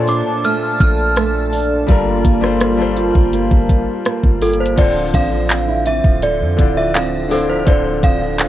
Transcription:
0.00 0.22 A#2 loud
0.00 1.89 A#2 medium
0.00 1.90 A#2 medium
0.00 0.44 A3 medium
0.00 1.91 A#3 medium
0.00 1.86 D4 medium
0.00 1.88 D4 medium
0.00 2.97 F4 medium
0.00 1.86 A4 medium
0.00 1.90 A4 medium
0.00 1.91 C5 medium
0.00 1.91 C#5 medium
0.00 1.05 D5 medium
0.00 0.19 A5 medium
0.00 4.74 A5 medium
0.07 0.80 D4 medium
0.07 0.45 D6 medium
0.07 open hi-hat soft
0.44 1.16 A3 medium
0.44 0.78 F6 loud
0.44 closed hi-hat medium
0.80 1.85 A#1 loud
0.80 1.52 D4 medium
0.80 1.49 F6 loud
0.80 kick loud
0.80 closed hi-hat medium
1.16 1.88 A3 medium
1.16 cross-stick loud
1.16 closed hi-hat medium
1.53 2.25 D4 medium
1.53 open hi-hat medium
1.87 2.23 G1 loud
1.87 2.29 G3 medium
1.87 4.78 G3 medium
1.87 4.75 A#3 medium
1.87 2.30 D4 medium
1.87 4.75 F4 medium
1.87 2.30 F4 medium
1.87 2.31 A4 medium
1.87 kick loud
1.87 closed hi-hat medium
1.91 2.31 A#4 medium
2.25 3.12 G1 loud
2.25 3.32 A#3 medium
2.25 kick loud
2.25 closed hi-hat medium
2.41 2.70 G3 medium
2.41 2.70 D4 medium
2.41 2.71 F4 medium
2.41 2.71 A4 medium
2.41 cross-stick medium
2.45 2.72 C5 medium
2.60 6.11 A4 medium
2.60 cross-stick loud
2.60 closed hi-hat medium
2.77 3.89 G3 medium
2.77 3.89 D4 medium
2.77 3.90 F4 medium
2.77 3.90 A4 medium
2.82 3.91 C5 loud
2.96 3.69 F4 medium
2.96 closed hi-hat medium
3.15 3.50 G1 loud
3.15 kick loud
3.33 4.04 A#3 medium
3.33 closed hi-hat medium
3.51 3.86 G1 loud
3.51 kick loud
3.69 4.41 F4 medium
3.69 kick loud
3.69 closed hi-hat medium
4.05 4.85 A#3 medium
4.05 cross-stick loud
4.05 closed hi-hat medium
4.23 4.76 G1 loud
4.23 kick medium
4.41 5.68 F4 medium
4.41 4.59 A4 medium
4.41 closed hi-hat medium
4.41 open hi-hat medium
4.53 closed hi-hat medium
4.60 4.79 C5 medium
4.66 closed hi-hat medium
4.76 5.12 D1 loud
4.76 5.87 D3 medium
4.76 6.22 D3 medium
4.76 5.88 C4 medium
4.76 5.88 D4 medium
4.76 5.89 F4 medium
4.76 5.15 D5 medium
4.76 5.97 G5 medium
4.76 kick loud
4.76 closed hi-hat medium
4.76 crash loud
4.80 5.89 C5 medium
4.96 5.31 F3 medium
5.14 6.01 A1 loud
5.14 5.49 C4 medium
5.14 5.83 F5 loud
5.14 kick loud
5.14 closed hi-hat medium
5.32 6.04 F3 medium
5.50 5.85 C4 medium
5.50 clap loud
5.50 closed hi-hat medium
5.68 7.13 E4 medium
5.86 6.57 C4 medium
5.86 6.20 E5 medium
5.86 closed hi-hat medium
6.04 6.42 D1 loud
6.04 6.40 F3 medium
6.04 kick loud
6.22 7.67 D3 medium
6.22 6.79 D5 medium
6.22 closed hi-hat medium
6.40 6.58 F2 loud
6.40 6.76 F3 medium
6.57 7.63 D1 loud
6.57 7.13 D3 medium
6.57 6.94 C4 medium
6.57 7.13 D4 medium
6.57 7.14 E4 medium
6.57 7.14 F4 medium
6.57 kick loud
6.57 closed hi-hat medium
6.61 7.15 D5 medium
6.77 7.48 F3 medium
6.77 6.94 E5 medium
6.95 7.30 C4 medium
6.95 7.29 F5 medium
6.95 clap loud
6.95 closed hi-hat medium
7.29 7.57 D3 medium
7.29 8.02 C4 medium
7.29 7.58 D4 medium
7.29 7.58 E4 medium
7.29 7.59 F4 medium
7.29 7.50 A4 medium
7.29 8.48 E6 medium
7.29 open hi-hat medium
7.33 7.60 C5 medium
7.49 7.85 F3 medium
7.49 7.68 C5 medium
7.65 8.02 D1 loud
7.65 8.48 D3 medium
7.65 8.48 C4 medium
7.65 8.48 D4 medium
7.65 8.48 F4 medium
7.65 7.81 D5 medium
7.65 kick loud
7.65 closed hi-hat medium
7.70 8.48 C5 medium
7.85 8.21 F3 medium
8.03 8.48 D1 loud
8.03 8.38 C4 medium
8.03 8.48 F5 loud
8.03 kick loud
8.03 closed hi-hat medium
8.21 8.48 F3 medium
8.39 8.48 C4 medium
8.39 clap loud
8.39 closed hi-hat medium

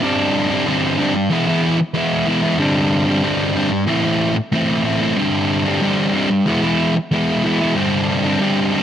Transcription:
0.01 0.65 G2 medium
0.01 0.66 D3 medium
0.01 0.51 G3 loud
0.01 0.50 C4 medium
0.01 0.48 D4 loud
0.50 0.66 G3 medium
0.50 0.67 C4 medium
0.50 0.68 D4 medium
0.66 1.29 G2 medium
0.66 0.97 D3 medium
0.66 0.98 G3 loud
0.66 0.99 C4 loud
0.66 1.00 D4 loud
0.99 1.15 D3 medium
0.99 1.14 G3 medium
0.99 1.14 C4 medium
0.99 1.14 D4 medium
1.15 muted distorted electric guitar stroke medium
1.30 1.79 E3 medium
1.30 1.49 G#3 medium
1.30 1.47 B3 medium
1.30 1.46 E4 medium
1.47 1.79 G#3 medium
1.47 1.79 B3 medium
1.47 1.78 E4 medium
1.79 muted distorted electric guitar stroke medium
1.94 2.25 E3 medium
1.94 2.27 G#3 medium
1.94 2.27 B3 medium
1.94 2.28 E4 loud
2.27 2.58 E3 medium
2.27 2.44 G#3 medium
2.27 2.42 B3 medium
2.27 2.41 E4 medium
2.42 2.59 G#3 medium
2.42 2.58 B3 medium
2.42 2.57 E4 medium
2.59 3.21 G2 medium
2.59 3.22 D3 medium
2.59 3.09 G3 medium
2.59 3.07 C4 medium
2.59 3.06 D4 medium
3.08 3.23 G3 medium
3.08 3.23 C4 medium
3.08 3.24 D4 medium
3.23 3.86 G2 loud
3.23 3.53 D3 medium
3.23 3.55 G3 loud
3.23 3.55 C4 loud
3.23 3.56 D4 loud
3.54 3.71 D3 medium
3.54 3.71 G3 medium
3.54 3.70 C4 medium
3.54 3.70 D4 medium
3.71 muted distorted electric guitar stroke soft
3.87 4.36 A2 medium
3.87 4.35 E3 medium
3.87 4.05 A3 loud
3.87 4.04 C4 medium
3.87 4.02 E4 loud
4.03 4.35 A3 medium
4.03 4.35 C4 medium
4.03 4.35 E4 medium
4.36 muted distorted electric guitar stroke medium
4.52 5.16 A2 medium
4.52 4.83 E3 medium
4.52 4.84 A3 medium
4.52 4.85 C4 loud
4.52 4.86 E4 loud
4.84 5.16 E3 medium
4.84 5.03 A3 medium
4.84 5.01 C4 medium
4.84 5.00 E4 medium
5.01 5.17 A3 medium
5.01 5.17 C4 medium
5.01 5.16 E4 medium
5.17 5.80 G2 loud
5.17 5.81 D3 medium
5.17 5.67 G3 loud
5.17 5.65 C4 medium
5.17 5.64 D4 medium
5.65 5.82 G3 medium
5.65 5.83 C4 medium
5.65 5.83 D4 medium
5.81 6.45 G2 loud
5.81 6.12 D3 loud
5.81 6.13 G3 medium
5.81 6.14 C4 loud
5.81 6.15 D4 loud
6.13 6.30 D3 medium
6.13 6.30 G3 medium
6.13 6.30 C4 medium
6.13 6.29 D4 medium
6.30 muted distorted electric guitar stroke soft
6.46 6.95 E3 medium
6.46 6.64 G#3 loud
6.46 6.62 B3 medium
6.46 6.61 E4 medium
6.62 6.96 G#3 medium
6.62 6.95 B3 medium
6.62 6.95 E4 medium
6.96 muted distorted electric guitar stroke medium
7.11 7.43 E3 medium
7.11 7.44 G#3 loud
7.11 7.45 B3 loud
7.11 7.46 E4 medium
7.44 7.75 E3 medium
7.44 7.62 G#3 medium
7.44 7.60 B3 medium
7.44 7.59 E4 medium
7.60 7.76 G#3 medium
7.60 7.75 B3 medium
7.60 7.74 E4 medium
7.76 8.39 G2 medium
7.76 8.40 D3 medium
7.76 8.26 G3 loud
7.76 8.24 C4 loud
7.76 8.23 D4 medium
8.24 8.40 G3 medium
8.24 8.41 C4 medium
8.24 8.42 D4 medium
8.40 8.83 G2 loud
8.40 8.72 D3 medium
8.40 8.73 G3 loud
8.40 8.74 C4 loud
8.40 8.75 D4 loud
8.73 8.83 D3 medium
8.73 8.83 G3 medium
8.73 8.83 C4 medium
8.73 8.83 D4 medium

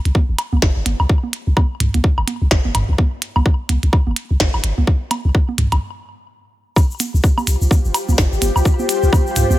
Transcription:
0.05 0.11 C2 medium
0.05 closed hi-hat soft
0.15 kick loud
0.15 high conga soft
0.29 0.35 G1 medium
0.39 closed hi-hat medium
0.39 high woodblock medium
0.53 0.58 C2 medium
0.53 high conga soft
0.62 0.71 G1 medium
0.62 kick loud
0.62 snare loud
0.76 0.82 G1 medium
0.86 0.94 G1 medium
0.86 closed hi-hat medium
0.86 high conga soft
1.00 1.06 C2 medium
1.00 high woodblock medium
1.09 kick loud
1.23 high conga soft
1.33 closed hi-hat medium
1.47 1.53 C2 loud
1.57 kick loud
1.57 high conga soft
1.57 high woodblock medium
1.80 1.89 C2 medium
1.80 closed hi-hat medium
1.80 mid tom medium
1.94 2.00 C2 medium
1.94 closed hi-hat soft
1.94 high conga soft
2.04 kick loud
2.18 2.24 G1 medium
2.18 high woodblock medium
2.27 closed hi-hat medium
2.27 high conga soft
2.42 2.47 C2 medium
2.51 2.60 G1 medium
2.51 kick loud
2.51 snare loud
2.65 2.71 G1 medium
2.65 high conga soft
2.75 2.83 G1 medium
2.75 closed hi-hat medium
2.75 mid tom medium
2.75 high woodblock medium
2.89 2.95 C2 medium
2.98 kick loud
2.98 high conga soft
3.22 closed hi-hat medium
3.36 3.42 C2 medium
3.36 high conga soft
3.36 high woodblock medium
3.46 kick loud
3.69 3.78 C2 medium
3.69 closed hi-hat medium
3.69 high conga soft
3.83 3.89 C2 medium
3.83 closed hi-hat soft
3.93 kick loud
3.93 high woodblock medium
4.07 4.13 G1 medium
4.07 high conga soft
4.16 closed hi-hat medium
4.31 4.36 C2 medium
4.40 4.49 G1 medium
4.40 kick loud
4.40 snare loud
4.40 high conga soft
4.54 4.60 G1 medium
4.54 high woodblock medium
4.64 4.72 G1 medium
4.64 closed hi-hat medium
4.78 4.84 C2 medium
4.78 high conga soft
4.87 kick loud
5.11 closed hi-hat medium
5.11 high conga soft
5.11 high woodblock medium
5.25 5.31 C2 loud
5.35 kick loud
5.49 high conga soft
5.58 5.67 C2 medium
5.58 closed hi-hat medium
5.58 mid tom medium
5.72 5.78 C2 medium
5.72 closed hi-hat soft
5.72 high woodblock medium
6.76 9.59 F4 medium
6.76 9.59 G4 medium
6.76 kick loud
6.76 high woodblock medium
6.76 shaker medium
6.88 9.59 G4 medium
6.88 shaker soft
7.00 closed hi-hat medium
7.00 high conga soft
7.00 shaker medium
7.14 7.20 C2 medium
7.14 shaker soft
7.23 9.59 C5 medium
7.23 kick loud
7.23 shaker medium
7.38 9.59 G5 medium
7.38 high conga soft
7.38 high woodblock medium
7.38 shaker soft
7.47 7.56 C2 medium
7.47 closed hi-hat medium
7.47 shaker medium
7.61 7.67 C2 medium
7.61 shaker soft
7.71 kick loud
7.71 high conga soft
7.71 shaker medium
7.85 7.91 G1 medium
7.85 shaker soft
7.94 closed hi-hat medium
7.94 high woodblock medium
7.94 shaker medium
8.08 8.14 C2 medium
8.08 high conga soft
8.08 shaker soft
8.18 8.27 G1 medium
8.18 kick loud
8.18 snare loud
8.18 shaker soft
8.32 8.38 G1 medium
8.32 shaker soft
8.42 8.50 G1 medium
8.42 closed hi-hat medium
8.42 high conga soft
8.42 shaker medium
8.56 8.62 C2 medium
8.56 high woodblock medium
8.56 shaker soft
8.65 kick loud
8.65 shaker medium
8.79 high conga soft
8.79 shaker soft
8.89 closed hi-hat loud
8.89 shaker medium
9.03 9.09 C2 loud
9.03 shaker soft
9.13 kick loud
9.13 high conga soft
9.13 high woodblock medium
9.13 shaker medium
9.27 shaker soft
9.36 9.45 C2 medium
9.36 closed hi-hat loud
9.36 mid tom medium
9.36 shaker medium
9.50 9.56 C2 medium
9.50 high conga soft
9.50 shaker soft

